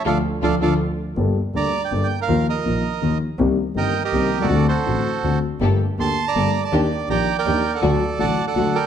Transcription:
<<
  \new Staff \with { instrumentName = "Bandoneon" } { \time 3/4 \key d \minor \tempo 4 = 162 << { <a' d'' f''>8 r8 <a' d'' f''>8 <a' d'' f''>8 r4 | \key g \minor r4 bes''8. g''8 g''8 f''16~ | f''8 ees''2 r8 | r4 g''8. ees''4 d''16~ |
d''8 c''2 r8 | r4 c'''8. bes''4 a''16~ | a''16 r8. bes''8. g''4 fis''16~ | fis''16 r8. a''8. fis''8. g''8 | } \\ { r2. | r4 d''4. r16 bes'16~ | bes'8 bes'2 r8 | r4 <bes' ees''>8. <g' bes'>4 <fis' a'>16~ |
<fis' a'>8 <fis' a'>2 r8 | r4 a''8. d''4 d''16~ | d''4 <d'' g''>8. <bes' d''>4 <a' d''>16~ | <a' d''>4 <d'' fis''>8. <a' d''>8. <bes' d''>8 | } >> }
  \new Staff \with { instrumentName = "String section" } { \time 3/4 \key d \minor <d' f' a'>8 r8 <d' f' a'>8 <d' f' a'>8 r4 | \key g \minor r2. | r2. | r2. |
r2. | <bes g' a'>8 r8 <bes g' a'>8 r8 <bes g' a'>8 r8 | <d' ees' g'>8 r8 <d' ees' g'>8 r8 <d' ees' g'>8 r8 | <a d' fis'>8 r8 <a d' fis'>8 r8 <a d' fis'>8 r8 | }
  \new Staff \with { instrumentName = "Grand piano" } { \clef bass \time 3/4 \key d \minor <d f a>8 r8 <d f a>8 <d f a>8 r4 | \key g \minor <g,, g, g bes d' a'>8 r8 <d, d g bes d' a'>8 r8 <g,, g, g bes d' a'>8 r8 | <ees, ees f bes f'>8 r8 <bes,, bes, ees f bes f'>8 r8 <ees, ees f bes f'>8 r8 | <c, c ees bes c' g'>8 r8 <g,, g, ees bes c' g'>8 r8 <c, c ees bes c' g'>8 r32 b,,32 c,32 cis,32 |
<d, d a c' fis'>8 r8 <a,, a, d a c' fis'>8 r8 <d, d a c' fis'>8 r8 | <g,, g, d a bes g'>8 r8 <d, d a bes g'>8 r8 <g,, g, d a bes g'>8 r8 | <ees, ees bes d' g'>8 r8 <bes,, bes, ees bes d' g'>8 r8 <ees, ees bes d' g'>8 r8 | <d, d fis a fis'>8 r8 <a,, a, d fis a fis'>8 r8 <d, d fis a fis'>8 r8 | }
  \new Staff \with { instrumentName = "Double bass" } { \clef bass \time 3/4 \key d \minor d,8 r8 d,8 d,8 r4 | \key g \minor g,,8 r8 d,8 r8 g,,8 r8 | ees,8 r8 bes,,8 r8 ees,8 r8 | c,8 r8 g,,8 r8 c,8 c,8 |
d,8 r8 a,,8 r8 d,8 r8 | g,,8 r8 d,8 r8 g,,8 r8 | ees,8 r8 bes,,8 r8 ees,8 r8 | d,8 r8 a,,8 r8 d,8 r8 | }
>>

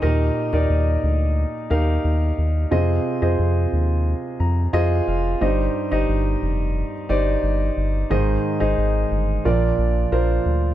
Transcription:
<<
  \new Staff \with { instrumentName = "Grand piano" } { \time 4/4 \key ees \major \tempo 4 = 89 <ees' g' bes' ees''>8. <ees' g' bes' d''>4. r16 <ees' g' bes' f''>4~ <ees' g' bes' f''>16 r16 | <f' aes' c'' ees''>8. <f' aes' c'' ees''>4.~ <f' aes' c'' ees''>16 r8 <f' aes' c'' ees''>8. r16 | <ees' g' c'' ees''>8. <ees' g' c'' ees''>4. r16 <ees' g' c'' d''>4~ <ees' g' c'' d''>16 r16 | <ees' aes' c'' ees''>8. <ees' aes' c'' ees''>4~ <ees' aes' c'' ees''>16 <d' f' bes' d''>8. r16 <d' f' bes' c''>8. r16 | }
  \new Staff \with { instrumentName = "Grand piano" } { \clef bass \time 4/4 \key ees \major bes,4. r2 r8 | c4. r4 bes''8 aes''8 f''8 | <g, g>4. r2 r8 | <aes, ees>4. r8 <bes, f>4. r8 | }
  \new Staff \with { instrumentName = "Analog synth bass" } { \clef bass \time 4/4 \key ees \major ees,8 r16 ees,16 ees,8 d,8. r16 ees,8 ees,8 ees,8 | f,8 r16 f,16 f,8 ees,8. r16 f,8 f,8 f,,8 | g,,8 r16 g,,16 g,,8 f,,8. r16 g,,8 g,,8 g,,8 | aes,,8 r16 aes,,16 aes,,8 g,,8 bes,,8 bes,,8 bes,,8 d,8 | }
>>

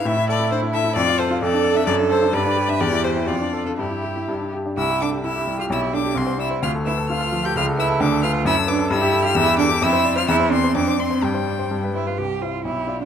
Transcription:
<<
  \new Staff \with { instrumentName = "Violin" } { \time 2/4 \key a \minor \tempo 4 = 130 e''8 d''8 c''8 e''8 | \key c \major d''8 c''8 d''8. e''16 | d''8 c''8 d''8. e''16 | d''8 c''8 d''8. a'16 |
g'4. r8 | e'''8 d'''8 e'''8. f'''16 | e'''8 d'''8 c'''8 e'''8 | f'''8 e'''8 f'''8. g'''16 |
f'''8 e'''8 d'''8 f'''8 | e'''8 d'''8 e'''8. f'''16 | e'''8 d'''8 e'''8. f'''16 | e'''8 c'''8 d'''8 c'''8 |
g''4. r8 | r4 g'4 | }
  \new Staff \with { instrumentName = "Grand piano" } { \time 2/4 \key a \minor a,16 e'16 a'16 e'16 d'16 e'16 a'16 e'16 | \key c \major f,16 f'16 a'16 f'16 f,16 d'16 a'16 d'16 | fis,16 d'16 a'16 d'16 g,16 d'16 g'16 d'16 | e,16 e'16 g'16 e'16 f,16 d'16 a'16 d'16 |
g,16 e'16 g'16 e'16 g,16 d'16 g'16 d'16 | c,16 g'16 a'16 g'16 e'16 g'16 g16 g'16 | b,,16 g'16 a'16 g'16 c,16 c''16 d''16 c''16 | d,16 a'16 b'16 a'16 f'16 a'16 f16 a'16 |
cis,16 a'16 b'16 a'16 d,16 a'16 b'16 a'16 | fis,16 a'16 b'16 a'16 g,16 g'16 a'16 g'16 | e,16 g'16 a'16 g'16 f,16 c''16 d''16 c''16 | e,16 c''16 d''16 c''16 f,16 c''16 d''16 c''16 |
g,16 c''16 d''16 c''16 g,16 b'16 c''16 b'16 | c,8 <e' c''>8 b,,8 <f' d''>8 | }
  \new Staff \with { instrumentName = "Cello" } { \time 2/4 \key a \minor e'2 | \key c \major f'4 a'4 | a'4 b'4 | g'4 f'4 |
e'4. r8 | e'8 d'8 e'8. f'16 | e'8 d'8 c'8 e'8 | f'8 e'8 f'8. g'16 |
f'8 e'8 d'8 f'8 | e'8 d'8 e'8. f'16 | e'8 d'8 e'8. f'16 | e'8 c'8 d'8 c'8 |
g4. e'16 f'16 | g'8 f'8 e'8. d'16 | }
>>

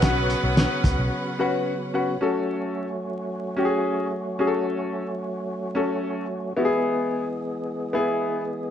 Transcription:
<<
  \new Staff \with { instrumentName = "String section" } { \time 4/4 \key fis \dorian \tempo 4 = 110 <cis' b' fis''>1 | r1 | r1 | r1 | }
  \new Staff \with { instrumentName = "Grand piano" } { \time 4/4 \key fis \dorian <cis' fis' b' fis''>4 r4. <cis' fis' b' fis''>8 r8 <cis' fis' b' fis''>8 | <cis' fis' a'>4 r4. <cis' fis' g' gis'>4 r8 | <cis' fis' gis' a'>4 r4. <cis' fis' a'>4 r8 | <b e' fis' gis'>4 r4. <b e' gis'>4 r8 | }
  \new Staff \with { instrumentName = "Horn section" } { \time 4/4 \key fis \dorian <fis b cis' b'>2.~ <fis b cis' b'>8 r8 | r1 | r1 | r1 | }
  \new Staff \with { instrumentName = "Tonewheel organ" } { \time 4/4 \key fis \dorian <cis fis b fis'>1 | <fis a cis' fis'>1~ | <fis a cis' fis'>1 | <e gis b gis'>1 | }
  \new Staff \with { instrumentName = "Picked electric bass" } { \clef bass \time 4/4 \key fis \dorian b,,8. b,,8 r16 cis,16 b,,16 r2 | r1 | r1 | r1 | }
  \new DrumStaff \with { instrumentName = "Drums" } \drummode { \time 4/4 <hh bd sn>8 hh8 <hh sn>8 <hh bd>8 r4 r4 | r4 r4 r4 r4 | r4 r4 r4 r4 | r4 r4 r4 r4 | }
>>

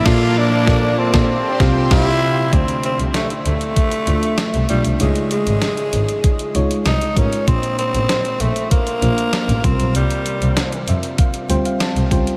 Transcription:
<<
  \new Staff \with { instrumentName = "Analog synth pad" } { \time 4/4 \key d \minor \tempo 4 = 97 <bes a'' d'''>2 <g' g'' c'''>2 | r1 | r1 | r1 |
r1 | }
  \new Staff \with { instrumentName = "FM electric piano" } { \time 4/4 \key d \minor << { r1 | d4. r2 r8 | des4. r2 r8 | bes,4. r2 c8~ |
c4 r8 e''8 f''8 g''16 f''16 a''8 g''8 | } \\ { <bes, bes f' a' d''>8 r8 <bes f' a' d''>8 r16 <bes f' a' d''>8 r16 <c c' f' g' f''>8 <c c' f' g' f''>8 r8 | <a d' f' d''>4.~ <a d' f' d''>16 r8. <a d' f' e''>4 <a d' f' d''>8 | <aes ees' f' des''>4.~ <aes ees' f' des''>16 r8. <aes ees' f' des''>4 <aes ees' f' bes'>8 | <bes d' f' c''>4.~ <bes d' f' c''>16 r8. <bes d' f' c''>4 <g c' f' c''>8~ |
<g c' f' c''>4~ <g c' f' c''>16 r4 r16 <g c' f' c''>4 <g c' f' c''>8 | } >> }
  \new Staff \with { instrumentName = "Tenor saxophone" } { \time 4/4 \key d \minor f'8 d'4 c'4. e'4 | c'8 c'8 a8 a2 g8 | aes8 aes2 r8 ees'8 des'8 | c'8 c'4 a8 bes4. c'8 |
g4. r2 r8 | }
  \new Staff \with { instrumentName = "Overdriven electric guitar" } { \clef bass \time 4/4 \key d \minor <bes, f bes>8 r8 <bes, f bes>8 r16 <bes, f bes>8 r16 <c g c'>8 <c g c'>8 r8 | r1 | r1 | r1 |
r1 | }
  \new Staff \with { instrumentName = "Double bass" } { \clef bass \time 4/4 \key d \minor bes,,8 r8 bes,,8 r16 bes,,8 r16 c,8 c,8 r8 | d,8. c,16 r8 d,8 r8 d,8 r16 c,16 b,,16 c,16 | des,8. aes,,16 r8 aes,,8 r8 des,8 c,8 a,,8 | bes,,8. a,,16 r8 bes,,8 r8 bes,,8 r16 a,,16 c,16 b,,16 |
c,8. c,16 r8 f,8 r8 d,8. c,16 des,8 | }
  \new DrumStaff \with { instrumentName = "Drums" } \drummode { \time 4/4 <cymc bd sn>4 <bd sn>8. <bd sn>16 r8 <bd sn>8 <cymc bd sn>4 | <hh bd>16 hh16 hh16 hh16 <hh sn>16 hh16 hh16 hh16 <hh bd>16 hh16 hh16 hh16 <hh sn>16 hh16 hh16 hh16 | hh16 hh16 hh16 hh16 <hh sn>16 hh16 hh16 hh16 <hh bd>16 hh16 hh16 hh16 <hh sn>16 hh16 <hh bd>16 hh16 | <hh bd>16 hh16 hh16 hh16 <hh sn>16 hh16 hh16 hh16 <hh bd>16 hh16 hh16 hh16 <hh sn>16 hh16 <hh bd>16 hh16 |
hh16 hh16 hh16 hh16 <hh sn>16 hh16 hh16 hh16 <hh bd>16 hh16 hh16 hh16 <hh sn>16 hh16 <hh bd>16 hh16 | }
>>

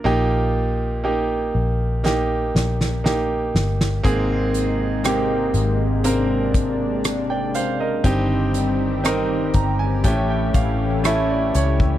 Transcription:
<<
  \new Staff \with { instrumentName = "Grand piano" } { \time 4/4 \key aes \lydian \tempo 4 = 60 << { r1 | r2. r16 <d'' g''>16 <c'' f''>16 <bes' ees''>16~ | <bes' ees''>16 r4 r16 bes''16 aes''16 g''16 g''16 f''8 e''16 d''16 cis''8 | } \\ { <bes ees' g'>4 <bes ees' g'>4 <bes ees' g'>4 <bes ees' g'>4 | <bes c' aes'>4 <bes c' g'>4 <bes c' bes'>4 r4 | <c' ees' g'>4 <c' ees' bes'>4 <a cis' g'>4 <a cis' e'>4 | } >> }
  \new Staff \with { instrumentName = "Grand piano" } { \clef bass \time 4/4 \key aes \lydian bes,4. r2 r8 | aes,4. r2 r8 | g,4. r8 a,4. r8 | }
  \new Staff \with { instrumentName = "Analog synth pad" } { \time 4/4 \key aes \lydian << { r1 | ees'2 d'2 | g'1 | } \\ { r1 | <c aes bes>1 | <ees g c'>2 <e a cis'>2 | } >> }
  \new Staff \with { instrumentName = "Fingered electric bass" } { \clef bass \time 4/4 \key aes \lydian bes,,4. bes,,4 bes,,4 g,,8 | aes,,4. aes,,2~ aes,,8 | g,,4. g,,8 a,,8 a,,4 cis,8 | }
  \new DrumStaff \with { instrumentName = "Drums" } \drummode { \time 4/4 r4 r4 sn8 sn16 sn16 sn8 sn16 sn16 | <hh bd>8 hh8 <hh ss>8 hh8 hh8 <hh bd>8 <hh ss>8 hh8 | <hh bd>8 hh8 <hh ss>8 <hh bd>8 <hh bd>8 <hh bd>8 <hh ss>8 hh16 bd16 | }
>>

